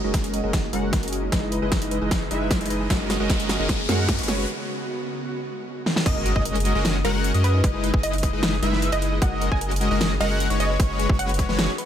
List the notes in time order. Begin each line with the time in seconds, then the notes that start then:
Already playing: C#3 A#3 G#4, riser
0.04 F#1 G#3 C#4 D#4 F#4 A#4 D#5
0.14 A#4, kick, snare, closed hi-hat
0.24 G#4, closed hi-hat
0.34 A#4, closed hi-hat
0.44 F#1 G#3 C#4 F#4 G#4 A#4 D#5
0.53 F#4, kick, snare, closed hi-hat
0.63 D#4
0.73 F#1 G#3 C#4 F#4 A#4 F#5, closed hi-hat
0.83 G#4
0.93 A#4, kick, snare, closed hi-hat
1.03 F#1 G#3 C#4 F#4 G#4 A#4 D#5, closed hi-hat
1.08 closed hi-hat
1.12 F#4, closed hi-hat
1.23 D#4
1.32 F#1 E3 G#3 D#4 E4 B4 D#5, kick, snare, closed hi-hat
1.42 G#4
1.52 B4, closed hi-hat
1.62 F#1 G#3 D#4 E4 G#4 B4 D#5
1.72 E4, kick, snare, closed hi-hat
1.82 D#4, closed hi-hat
1.91 B4, closed hi-hat
2.02 F#1 G#3 D#4 E4 G#4 B4 D#5
2.11 B4, kick, snare, closed hi-hat
2.21 G#4
2.31 F#1 G#3 D#4 E4 B4 E5, closed hi-hat
2.41 D#4
2.51 B4, kick, snare, closed hi-hat
2.61 F#1 G#3 D#4 E4 G#4 B4 D#5, closed hi-hat
2.66 closed hi-hat
2.70 B4, closed hi-hat
2.80 G#4
2.90 F#1 D#3 A#3 C#4 F#4 G#4 A#4 D#5, kick, snare, closed hi-hat
3.00 D#4
3.10 A#4, snare, closed hi-hat
3.20 F#1 G#3 C#4 F#4 G#4 A#4 D#5
3.30 A#4, kick, snare, closed hi-hat
3.40 G#4, closed hi-hat
3.49 F#4, snare, closed hi-hat
3.59 F#1 G#3 C#4 D#4 F#4 A#4 D#5
3.69 A#4, kick, snare, closed hi-hat
3.79 G#4
3.89 F#2 G#3 C#4 F#4 A#4 F#5, snare, closed hi-hat
3.99 G#4
4.09 F#4, kick, snare, closed hi-hat
4.19 F#1 G#3 C#4 D#4 F#4 B4 C#5, closed hi-hat
4.24 closed hi-hat
4.28 C#3 B3 F#4 C#5, snare, closed hi-hat
4.38 B4
5.86 snare
5.96 snare
6.06 F#1 G#3 C#4 F#4 A#4 D#5 D#6, kick, closed hi-hat, crash, impact
6.16 G#4
6.26 F#4, closed hi-hat
6.36 F#1 G#3 C#4 D#4 F#4 A#4 D#5 D#6, kick
6.45 A#4, closed hi-hat
6.55 G#4, closed hi-hat
6.60 closed hi-hat
6.65 A#4, closed hi-hat
6.75 F#1 G#3 C#4 F#4 G#4 A#4 D#5 D#6
6.85 F#4, snare, closed hi-hat
6.95 D#4
7.05 F#1 G#3 C#4 F#4 A#4 F#5 F#6, closed hi-hat
7.15 G#4
7.24 A#4, closed hi-hat
7.34 F#2 G#3 C#4 F#4 G#4 A#4 D#5 D#6, closed hi-hat
7.44 F#4 B4, closed hi-hat
7.54 D#4
7.64 F#1 G#3 B4, kick, closed hi-hat
7.74 G#4
7.84 B4, closed hi-hat
7.94 F#1 D#4 E4 G#4 B4 D#5 D#6, kick
8.03 E4 D#5, closed hi-hat
8.13 D#4, closed hi-hat
8.18 closed hi-hat
8.23 B4, kick, closed hi-hat
8.33 F#1 G#3 D#4 E4 G#4 B4 D#5 D#6
8.43 B4, snare, closed hi-hat
8.53 G#4
8.62 F#1 G#3 D#4 E4 B4 E5 E6, closed hi-hat
8.73 D#4, snare
8.82 B4, closed hi-hat
8.92 F#1 G#3 D#4 E4 G#4 B4 D#5 D#6, closed hi-hat
9.02 B4, closed hi-hat
9.12 G#4
9.22 F#1 G#3 C#4 F#4 A#4 F#5 D#6, kick, closed hi-hat
9.32 D#4
9.42 A#4, closed hi-hat
9.52 F#1 G#3 C#4 F#4 G#4 G#5 D#6, kick
9.61 A#4, closed hi-hat
9.71 G#4, closed hi-hat
9.76 closed hi-hat
9.81 F#4, closed hi-hat
9.91 F#1 G#3 C#4 D#4 F#4 A#4 D#5 D#6
10.01 A#4, snare, closed hi-hat
10.11 G#4
10.20 F#1 G#3 C#4 F#4 A#4 D#5 F#5 F#6, closed hi-hat
10.31 G#4
10.40 F#4, closed hi-hat
10.50 F#1 G#3 C#4 D#4 F#4 B4 C#5 C#6, closed hi-hat
10.60 C#5 D#5, closed hi-hat
10.70 B4
10.80 F#1 G#3 C#4 F#4 B4 C#5, kick, closed hi-hat
10.90 B4
10.99 G#4, closed hi-hat
11.09 F#1 G#3 C#4 F#4, kick
11.19 C#5 F#5, closed hi-hat
11.29 B4, closed hi-hat
11.34 closed hi-hat
11.39 C#5, kick, closed hi-hat
11.49 F#1 G#3 C#4 F#4 B4 C#5 C#6, snare
11.59 G#4, snare, closed hi-hat
11.69 F#4
11.78 B4, closed hi-hat